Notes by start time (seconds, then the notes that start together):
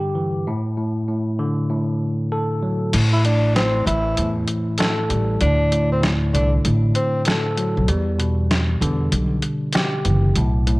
Already playing: G2 D3 G4
0.15 E3
0.47 A2
0.77 A2
1.08 A2
1.39 D3
1.70 A2
2.32 A4
2.63 F#3
2.93 A1 A2, closed hi-hat, crash
3.13 E4
3.24 A2 D4, closed hi-hat
3.56 A2 C4, snare, closed hi-hat
3.86 A1 E3 E4, closed hi-hat
4.17 E2 A2, closed hi-hat
4.48 closed hi-hat
4.78 A4, snare, closed hi-hat
5.09 A1 G3, closed hi-hat
5.41 D2 A2 D4, closed hi-hat
5.71 A2, closed hi-hat
5.92 C4
6.02 A2, snare, closed hi-hat
6.34 C2 D3 D4, closed hi-hat
6.64 A1 A2, closed hi-hat
6.95 C4, closed hi-hat
7.25 A4, snare, closed hi-hat
7.57 F#3, closed hi-hat
7.77 B1
7.88 E2 G3, closed hi-hat
8.18 B2, closed hi-hat
8.51 snare, closed hi-hat
8.81 E2 D3, closed hi-hat
9.12 B1, closed hi-hat
9.42 closed hi-hat
9.73 G4, snare, closed hi-hat
10.05 F#1 E3, closed hi-hat
10.36 B1 A2, closed hi-hat
10.67 A2, closed hi-hat